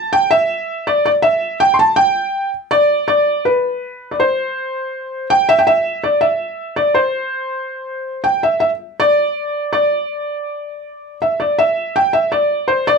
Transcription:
0.00 0.14 A5 loud
0.13 0.30 G5 medium
0.31 0.89 E5 medium
0.87 1.04 D5 medium
1.06 1.11 D5 medium
1.22 1.58 E5 medium
1.60 1.75 G5 medium
1.74 1.79 C6 medium
1.79 1.97 A5 medium
1.96 2.49 G5 medium
2.71 3.06 D5 medium
3.08 3.46 D5 medium
3.45 4.14 B4 medium
4.11 4.19 D5 medium
4.20 5.27 C5 medium
5.30 5.49 G5 medium
5.49 5.60 E5 medium
5.59 5.67 G5 medium
5.67 6.02 E5 medium
6.04 6.23 D5 medium
6.21 6.79 E5 medium
6.76 6.96 D5 medium
6.94 8.21 C5 medium
8.24 8.42 G5 medium
8.43 8.59 E5 medium
8.60 8.69 E5 medium
9.00 9.71 D5 medium
9.73 11.17 D5 medium
11.22 11.41 E5 medium
11.40 11.59 D5 medium
11.59 11.96 E5 medium
11.96 12.13 G5 medium
12.13 12.31 E5 medium
12.32 12.70 D5 medium
12.68 12.85 C5 medium
12.87 12.98 D5 medium

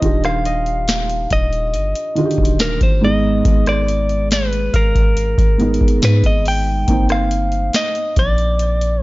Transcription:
0.00 1.27 D#1 loud
0.00 1.60 D#3 medium
0.00 1.61 D4 medium
0.00 1.61 F4 medium
0.00 0.25 D#5 loud
0.00 kick loud
0.00 closed hi-hat medium
0.05 1.62 G4 medium
0.24 1.32 F5 loud
0.24 cross-stick medium
0.24 closed hi-hat medium
0.45 1.57 D#5 medium
0.45 closed hi-hat medium
0.66 closed hi-hat soft
0.88 snare loud
0.88 closed hi-hat medium
1.10 closed hi-hat medium
1.30 1.76 D#1 loud
1.30 2.64 D#5 loud
1.30 kick medium
1.30 closed hi-hat medium
1.53 closed hi-hat soft
1.74 1.94 G1 loud
1.74 closed hi-hat medium
1.95 closed hi-hat medium
2.15 3.02 D3 medium
2.15 3.02 D#3 medium
2.15 3.03 F4 medium
2.15 2.24 F#4 medium
2.15 closed hi-hat soft
2.25 3.07 G4 medium
2.31 closed hi-hat medium
2.38 2.79 D#1 loud
2.38 kick loud
2.45 closed hi-hat medium
2.59 2.81 A#4 medium
2.59 snare loud
2.59 closed hi-hat medium
2.81 3.43 G#1 loud
2.81 3.02 C5 medium
2.81 kick medium
2.81 closed hi-hat medium
3.01 4.60 G#2 medium
3.01 4.61 G#3 medium
3.01 4.62 B3 medium
3.01 4.62 D#4 medium
3.01 3.68 D#5 loud
3.45 4.70 G#1 loud
3.45 kick loud
3.45 closed hi-hat medium
3.66 4.28 D5 loud
3.66 cross-stick loud
3.66 closed hi-hat soft
3.88 closed hi-hat medium
4.09 closed hi-hat soft
4.31 4.75 B4 loud
4.31 snare loud
4.31 closed hi-hat medium
4.53 closed hi-hat medium
4.74 5.36 G#1 loud
4.74 5.99 A#4 loud
4.74 5.86 F5 medium
4.74 kick medium
4.74 closed hi-hat medium
4.95 kick loud
4.95 closed hi-hat soft
5.17 closed hi-hat medium
5.38 5.79 G#1 loud
5.38 kick loud
5.38 closed hi-hat medium
5.58 6.78 G#2 medium
5.58 6.78 G#3 medium
5.58 6.79 B3 medium
5.58 6.79 D#4 medium
5.58 closed hi-hat soft
5.74 closed hi-hat medium
5.81 6.02 G#1 loud
5.81 kick loud
5.88 closed hi-hat medium
6.02 6.23 G#2 loud
6.02 6.26 B4 loud
6.02 snare loud
6.02 closed hi-hat medium
6.24 6.86 G#1 loud
6.24 6.47 D#5 loud
6.24 kick medium
6.24 closed hi-hat medium
6.45 7.07 G5 loud
6.45 open hi-hat medium
6.87 7.70 G1 loud
6.87 8.46 A#3 medium
6.87 8.47 C4 medium
6.87 8.48 D#4 medium
6.87 kick loud
6.87 closed hi-hat medium
7.09 7.76 F5 loud
7.09 cross-stick medium
7.09 closed hi-hat medium
7.31 closed hi-hat medium
7.52 closed hi-hat soft
7.73 8.19 D#5 loud
7.73 snare loud
7.73 closed hi-hat medium
7.95 closed hi-hat medium
8.16 9.03 A#1 loud
8.16 9.03 D5 loud
8.16 kick medium
8.16 closed hi-hat medium
8.38 closed hi-hat soft
8.59 closed hi-hat medium
8.81 closed hi-hat medium

